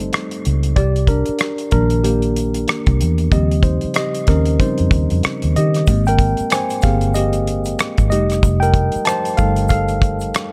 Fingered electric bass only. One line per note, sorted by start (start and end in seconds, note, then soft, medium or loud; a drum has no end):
0.47 0.74 C#2 medium
0.78 1.22 C2 loud
1.29 muted fingered electric bass stroke soft
1.74 2.65 A#1 medium
2.88 2.99 C2 medium
3.02 3.30 E2 medium
3.33 3.78 D#2 medium
3.84 muted fingered electric bass stroke soft
4.29 4.57 D#2 medium
4.80 4.91 F2 medium
4.92 5.08 D#2 medium
5.12 5.23 F2 medium
5.25 muted fingered electric bass stroke soft
5.44 5.55 D#2 medium
5.57 5.85 D#3 medium
5.89 6.33 G#1 loud
6.40 muted fingered electric bass stroke soft
6.85 7.75 G1 medium
7.99 8.13 G#1 medium
8.13 8.41 F1 medium
8.44 8.89 F1 loud
8.96 muted fingered electric bass stroke soft
9.40 10.31 G1 medium